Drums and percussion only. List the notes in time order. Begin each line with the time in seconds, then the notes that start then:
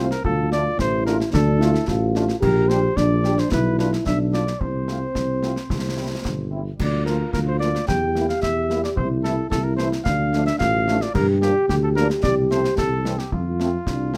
0.11 snare
0.25 concert bass drum
0.52 snare
0.79 concert bass drum, snare
1.07 snare
1.20 snare
1.34 concert bass drum, snare
1.61 snare
1.74 snare
1.88 concert bass drum, snare
2.15 snare
2.28 snare
2.42 concert bass drum, crash
2.70 snare
2.97 concert bass drum, snare
3.24 snare
3.38 snare
3.52 concert bass drum, snare
3.79 snare
3.93 snare
4.06 concert bass drum, snare
4.34 snare
4.47 snare
4.61 concert bass drum
4.88 snare
5.15 concert bass drum, snare
5.43 snare
5.56 snare
5.70 concert bass drum, snare
6.25 concert bass drum, snare
6.80 concert bass drum, crash
7.06 snare
7.33 concert bass drum, snare
7.61 snare
7.75 snare
7.88 concert bass drum, snare
8.15 snare
8.29 snare
8.43 concert bass drum, snare
8.70 snare
8.84 snare
8.97 concert bass drum
9.24 snare
9.52 concert bass drum, snare
9.78 snare
9.92 snare
10.06 concert bass drum, snare
10.33 snare
10.47 snare
10.61 concert bass drum, snare
10.88 snare
11.01 snare
11.15 concert bass drum, crash
11.42 snare
11.69 concert bass drum, snare
11.97 snare
12.10 snare
12.23 concert bass drum, snare
12.51 snare
12.64 snare
12.78 concert bass drum, snare
13.05 snare
13.19 snare
13.32 concert bass drum
13.60 snare
13.87 concert bass drum, snare
14.14 snare